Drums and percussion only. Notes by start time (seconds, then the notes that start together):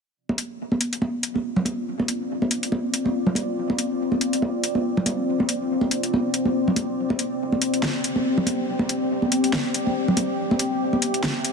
0.29 high conga
0.38 closed hi-hat
0.72 high conga
0.81 closed hi-hat
0.93 closed hi-hat
1.02 high conga
1.23 closed hi-hat
1.35 high conga
1.56 low conga
1.65 closed hi-hat, high conga
2.00 high conga
2.08 closed hi-hat
2.42 high conga
2.51 closed hi-hat
2.63 closed hi-hat
2.72 high conga
2.94 closed hi-hat
3.06 high conga
3.27 low conga
3.35 closed hi-hat, high conga
3.70 high conga
3.79 closed hi-hat
4.12 high conga
4.21 closed hi-hat
4.33 closed hi-hat
4.42 high conga
4.64 closed hi-hat
4.75 high conga
4.97 low conga
5.06 closed hi-hat, high conga
5.40 high conga
5.49 closed hi-hat
5.81 high conga
5.91 closed hi-hat
6.03 closed hi-hat
6.14 high conga
6.34 closed hi-hat
6.45 high conga
6.68 low conga
6.76 closed hi-hat, high conga
7.10 high conga
7.19 closed hi-hat
7.52 high conga
7.62 closed hi-hat
7.74 closed hi-hat
7.83 snare, high conga
8.04 closed hi-hat
8.16 high conga
8.38 low conga
8.46 closed hi-hat, high conga
8.79 high conga
8.89 closed hi-hat
9.22 high conga
9.32 closed hi-hat
9.44 closed hi-hat
9.53 snare, high conga
9.74 closed hi-hat
9.87 high conga
10.08 low conga
10.17 closed hi-hat, high conga
10.51 high conga
10.59 closed hi-hat
10.93 high conga
11.02 closed hi-hat
11.14 closed hi-hat
11.23 snare, high conga
11.45 closed hi-hat